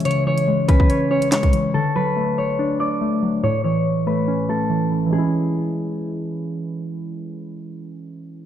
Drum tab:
HH |xx----x-----x---x-----x---x-x---|--------------------------------|--------------------------------|--------------------------------|
CP |------------------------x-------|--------------------------------|--------------------------------|--------------------------------|
SD |------------------------o-------|--------------------------------|--------------------------------|--------------------------------|
BD |------------o-o-----------o-----|--------------------------------|--------------------------------|--------------------------------|

HH |--------------------------------|
CP |--------------------------------|
SD |--------------------------------|
BD |--------------------------------|